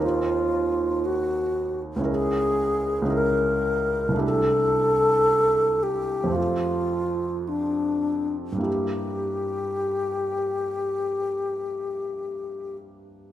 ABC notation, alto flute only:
X:1
M:4/4
L:1/16
Q:1/4=55
K:Gdor
V:1 name="Alto flute"
F4 ^F3 z ^G4 ^A4 | A6 G2 F4 D3 z | G12- G2 z2 |]